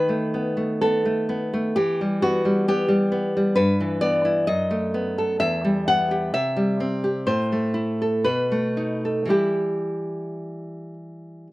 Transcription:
0.00 1.73 D#3 soft
0.00 0.77 B4 medium
0.09 0.56 A3 soft
0.34 0.81 B3 soft
0.57 1.04 A3 soft
0.81 1.28 B3 soft
0.81 1.72 A4 medium
1.05 1.52 A3 soft
1.29 1.76 B3 soft
1.54 1.76 A3 soft
1.76 3.54 E3 soft
1.76 2.20 G4 medium
2.01 2.44 G3 soft
2.22 2.67 B3 soft
2.22 2.65 F#4 medium
2.45 2.87 G3 soft
2.68 3.10 B3 soft
2.68 3.55 G4 medium
2.88 3.35 G3 soft
3.12 3.58 B3 soft
3.37 3.59 G3 soft
3.56 4.45 G2 medium
3.56 4.00 B4 medium
3.80 4.49 E3 soft
4.01 4.48 B3 soft
4.01 4.46 D5 medium
4.25 4.48 E4 soft
4.47 5.39 F#2 medium
4.47 5.37 D#5 medium
4.71 5.41 A3 soft
4.94 5.42 B3 soft
5.18 5.39 A4 soft
5.40 6.33 E2 soft
5.40 5.86 E5 medium
5.65 6.36 G3 soft
5.88 6.36 B3 soft
5.88 6.33 F#5 medium
6.11 6.36 G4 soft
6.34 7.27 C3 soft
6.34 7.26 E5 medium
6.57 7.29 G3 soft
6.80 7.29 C4 soft
7.04 7.29 G4 soft
7.27 8.24 A2 soft
7.27 8.23 C5 medium
7.52 8.28 A3 soft
7.74 8.26 E4 soft
8.02 8.28 A4 soft
8.24 9.29 B2 soft
8.24 9.28 B4 medium
8.52 9.33 A3 soft
8.77 9.27 D#4 soft
9.05 9.30 A4 soft
9.25 11.47 E3 soft
9.25 11.48 G3 soft
9.25 11.49 E4 soft
9.30 10.93 G4 soft

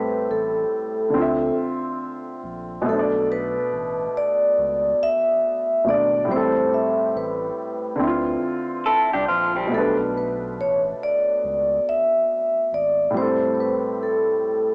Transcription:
0.00 1.09 A2 medium
0.00 1.11 G3 medium
0.00 1.12 C4 soft
0.00 1.15 A4 medium
0.00 0.27 B4 medium
0.30 0.65 A1 medium
0.30 1.54 A4 medium
1.10 2.80 D3 medium
1.14 1.51 D2 medium
1.14 2.82 C4 medium
1.14 2.84 F4 medium
1.21 2.86 E5 medium
2.44 2.79 A#1 medium
2.82 5.80 B2 medium
2.82 5.82 A3 medium
2.87 3.58 B1 medium
2.87 5.84 D4 soft
2.87 3.27 A4 medium
2.93 2.98 C5 soft
2.99 5.89 D5 medium
3.32 4.19 B4 medium
3.72 4.08 A1 loud
4.17 5.04 D5 loud
4.58 4.94 C#2 medium
5.03 5.90 E5 loud
5.84 6.22 G#1 medium
5.84 6.28 B2 soft
5.84 6.29 A3 soft
5.84 6.30 D4 soft
5.89 6.27 D5 medium
5.89 6.31 D5 medium
6.25 7.95 A2 medium
6.25 7.97 G3 medium
6.30 6.65 A1 loud
6.30 7.98 C4 medium
6.30 6.74 C5 medium
6.36 8.00 A4 medium
6.74 7.17 E5 medium
7.15 7.51 A1 loud
7.15 8.40 B4 medium
7.96 9.66 D3 medium
7.96 9.68 C4 medium
8.01 8.36 D2 loud
8.01 9.70 E4 medium
8.07 9.72 F4 medium
8.86 9.12 E4 medium
8.86 9.12 A4 medium
9.13 9.27 C2 medium
9.13 9.28 D4 medium
9.13 9.28 G4 medium
9.28 9.65 A#1 medium
9.28 9.55 C4 medium
9.28 9.55 F4 medium
9.56 9.97 G3 medium
9.56 9.97 C4 medium
9.67 13.08 B2 medium
9.67 13.10 A3 soft
9.72 10.60 B1 loud
9.72 13.12 D4 medium
9.72 9.93 A4 medium
9.78 13.14 B4 medium
10.17 10.60 B4 medium
10.58 10.94 A1 loud
10.58 10.79 C#5 medium
11.03 11.90 D5 loud
11.44 11.79 C#2 loud
11.89 12.76 E5 loud
12.72 13.08 G#1 medium
12.72 13.13 D5 medium
13.10 14.75 A2 medium
13.10 14.75 G3 medium
13.17 14.75 C4 medium
13.17 13.54 C5 medium
13.22 14.75 A4 medium
13.55 13.59 C5 medium
13.60 14.03 B4 medium
14.03 14.75 A4 medium

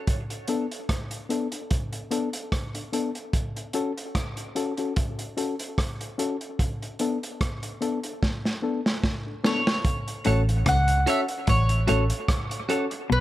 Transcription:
0.07 kick loud
0.07 closed hi-hat medium
0.30 closed hi-hat soft
0.48 0.65 B3 medium
0.48 0.65 D4 medium
0.48 0.66 A4 loud
0.48 closed hi-hat medium
0.72 closed hi-hat soft
0.89 kick medium
0.89 cross-stick loud
0.89 closed hi-hat medium
1.11 closed hi-hat medium
1.29 1.46 B3 medium
1.29 1.47 D4 medium
1.29 1.47 A4 medium
1.29 closed hi-hat medium
1.52 1.60 D4 soft
1.52 1.60 A4 soft
1.52 closed hi-hat soft
1.71 kick loud
1.71 closed hi-hat medium
1.93 closed hi-hat soft
2.11 2.28 B3 medium
2.11 2.28 D4 medium
2.11 2.28 A4 medium
2.11 closed hi-hat medium
2.33 closed hi-hat medium
2.52 kick loud
2.52 cross-stick loud
2.52 closed hi-hat medium
2.75 2.82 D4 soft
2.75 2.82 A4 soft
2.75 closed hi-hat medium
2.92 3.09 B3 medium
2.92 3.10 D4 medium
2.92 3.10 A4 medium
2.92 closed hi-hat medium
3.15 closed hi-hat soft
3.33 kick medium
3.33 closed hi-hat medium
3.56 closed hi-hat soft
3.73 3.91 C#4 medium
3.73 3.91 F#4 medium
3.73 3.91 A4 loud
3.73 closed hi-hat medium
3.98 closed hi-hat soft
4.15 kick medium
4.15 cross-stick loud
4.15 closed hi-hat medium
4.37 closed hi-hat medium
4.55 4.72 C#4 medium
4.55 4.73 F#4 medium
4.55 4.73 A4 medium
4.55 closed hi-hat medium
4.77 4.92 C#4 medium
4.77 4.92 F#4 medium
4.77 4.92 A4 medium
4.77 closed hi-hat soft
4.96 kick loud
4.96 closed hi-hat medium
5.19 closed hi-hat soft
5.37 5.54 C#4 medium
5.37 5.54 F#4 medium
5.37 5.54 A4 medium
5.37 closed hi-hat medium
5.59 closed hi-hat medium
5.78 kick loud
5.78 cross-stick loud
5.78 closed hi-hat medium
6.01 closed hi-hat medium
6.18 6.35 C#4 medium
6.18 6.35 F#4 medium
6.18 6.36 A4 medium
6.18 closed hi-hat medium
6.41 closed hi-hat soft
6.59 kick medium
6.59 closed hi-hat medium
6.82 closed hi-hat soft
6.99 7.17 B3 medium
6.99 7.17 D4 medium
6.99 7.17 A4 medium
6.99 closed hi-hat medium
7.23 closed hi-hat soft
7.41 kick loud
7.41 cross-stick loud
7.41 closed hi-hat medium
7.63 closed hi-hat medium
7.81 7.98 B3 medium
7.81 7.98 D4 medium
7.81 7.99 A4 medium
7.81 closed hi-hat medium
8.04 8.12 D4 soft
8.04 8.12 A4 soft
8.04 closed hi-hat soft
8.23 kick medium
8.23 snare medium
8.45 snare soft
8.62 8.79 B3 medium
8.62 8.80 D4 medium
8.62 8.80 A4 medium
8.86 snare medium
9.04 kick loud
9.04 snare medium
9.27 9.34 D4 soft
9.27 9.34 A4 soft
9.44 9.61 B3 medium
9.44 9.61 D4 medium
9.44 9.61 A4 medium
9.44 10.23 C#5 loud
9.44 snare medium
9.67 snare medium
9.85 kick loud
9.85 closed hi-hat medium
10.08 closed hi-hat soft
10.25 10.64 A1 loud
10.25 10.50 A2 medium
10.25 10.42 C#4 loud
10.25 10.42 F#4 medium
10.25 10.41 F#4 medium
10.25 10.43 A4 loud
10.25 10.41 A4 medium
10.25 10.41 C#5 medium
10.25 closed hi-hat medium
10.49 closed hi-hat soft
10.66 11.05 C#2 medium
10.66 10.91 C#3 medium
10.66 11.09 F#5 loud
10.66 kick loud
10.66 cross-stick loud
10.66 closed hi-hat loud
10.88 closed hi-hat medium
11.06 11.23 C#4 medium
11.06 11.21 F#4 medium
11.06 11.24 F#4 medium
11.06 11.22 A4 loud
11.06 11.24 A4 loud
11.06 11.22 C#5 medium
11.06 11.20 E5 medium
11.06 closed hi-hat medium
11.28 closed hi-hat soft
11.47 11.86 A1 medium
11.47 11.72 A2 medium
11.47 12.66 C#5 medium
11.47 kick loud
11.47 closed hi-hat medium
11.69 closed hi-hat soft
11.87 12.10 A1 medium
11.87 12.02 A2 medium
11.87 12.05 C#4 medium
11.87 12.03 F#4 medium
11.87 12.05 F#4 medium
11.87 12.03 A4 medium
11.87 12.05 A4 loud
11.87 12.03 C#5 medium
11.87 closed hi-hat medium
12.10 closed hi-hat medium
12.28 kick loud
12.28 cross-stick loud
12.28 closed hi-hat medium
12.51 closed hi-hat medium
12.69 12.86 C#4 medium
12.69 12.84 F#4 medium
12.69 12.86 F#4 medium
12.69 12.84 A4 medium
12.69 12.86 A4 medium
12.69 12.85 C#5 medium
12.69 closed hi-hat medium
12.91 muted clean electric guitar stroke soft
12.91 closed hi-hat soft
13.10 13.20 B1 loud
13.10 13.20 B2 medium
13.10 13.20 B4 medium

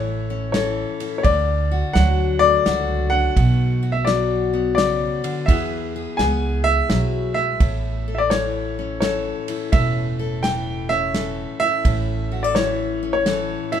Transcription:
0.00 0.83 A1 medium
0.00 1.21 A2 medium
0.00 0.53 E3 medium
0.00 1.00 E4 medium
0.00 0.53 A4 medium
0.00 0.51 C#5 medium
0.30 1.22 C#4 medium
0.52 1.24 E3 medium
0.52 1.22 A4 medium
0.52 1.15 C#5 medium
0.52 snare medium
0.52 ride soft
1.00 1.22 E4 medium
1.00 ride medium
1.18 1.24 C#5 medium
1.23 1.81 D2 medium
1.23 3.34 D3 medium
1.23 1.97 D5 medium
1.23 kick loud
1.23 ride medium
1.71 2.65 F#4 medium
1.93 2.55 D2 medium
1.93 2.65 F#3 medium
1.93 3.11 D4 medium
1.93 2.42 F#5 medium
1.93 snare medium
1.93 ride medium
2.39 3.37 A3 medium
2.39 3.07 D5 loud
2.66 3.26 C#2 medium
2.66 3.33 F#3 medium
2.66 3.81 F#4 medium
2.66 snare medium
2.66 ride medium
3.10 3.34 D4 medium
3.10 3.90 F#5 medium
3.36 5.07 B1 medium
3.36 4.77 B2 medium
3.36 kick loud
3.36 ride medium
3.83 5.48 F#4 medium
3.92 4.06 E5 medium
4.05 5.45 F#3 medium
4.05 4.73 D5 medium
4.05 snare medium
4.05 ride medium
4.54 5.45 B3 medium
4.75 5.23 C#3 medium
4.75 5.49 D5 medium
4.75 snare medium
4.75 ride medium
5.24 5.48 D3 medium
5.24 ride medium
5.46 6.05 E2 medium
5.46 6.90 E3 medium
5.46 6.18 B3 medium
5.46 6.66 E4 medium
5.46 6.20 E5 medium
5.46 kick loud
5.46 ride medium
5.50 5.95 G#4 medium
5.96 6.19 G#4 medium
6.17 6.79 C#2 medium
6.17 7.58 B3 medium
6.17 7.58 G#4 medium
6.17 6.66 G#5 medium
6.17 snare medium
6.17 ride soft
6.64 8.32 E4 medium
6.64 7.33 E5 loud
6.90 7.50 B1 medium
6.90 7.36 F#3 medium
6.90 snare medium
6.90 ride soft
7.34 7.61 G#3 medium
7.34 8.13 E5 medium
7.60 9.31 A1 medium
7.60 9.72 A2 medium
7.60 kick loud
7.60 ride medium
8.08 9.02 A4 medium
8.15 8.31 D5 medium
8.15 8.18 E5 medium
8.30 9.01 E3 medium
8.30 9.49 E4 medium
8.30 8.99 C#5 medium
8.30 snare medium
8.30 ride medium
8.79 10.90 C#4 medium
9.00 10.43 E3 medium
9.00 10.19 A4 medium
9.00 9.68 C#5 medium
9.00 snare medium
9.00 ride medium
9.48 10.44 E4 medium
9.48 ride medium
9.72 11.43 E1 medium
9.72 11.85 A2 medium
9.72 10.45 E5 medium
9.72 kick loud
9.72 ride medium
10.19 11.15 A4 medium
10.43 11.14 E3 medium
10.43 11.61 E4 soft
10.43 10.91 G5 medium
10.43 snare medium
10.43 ride medium
10.89 13.02 C#4 medium
10.89 11.58 E5 medium
11.14 12.56 E3 medium
11.14 12.31 A4 medium
11.14 snare medium
11.14 ride medium
11.60 12.35 E4 medium
11.60 12.46 E5 loud
11.85 13.56 A1 medium
11.85 13.80 A2 medium
11.85 kick loud
11.85 ride medium
12.32 12.44 F#4 medium
12.43 13.26 A4 medium
12.43 12.55 D5 medium
12.55 13.25 E3 medium
12.55 13.72 E4 medium
12.55 13.12 C#5 medium
12.55 snare medium
12.55 ride soft
13.03 13.80 C#4 medium
13.13 13.74 C#5 medium
13.26 13.80 E3 medium
13.26 13.80 A4 medium
13.26 snare medium
13.26 ride medium
13.72 13.80 E4 medium
13.72 13.80 E5 medium
13.72 ride medium

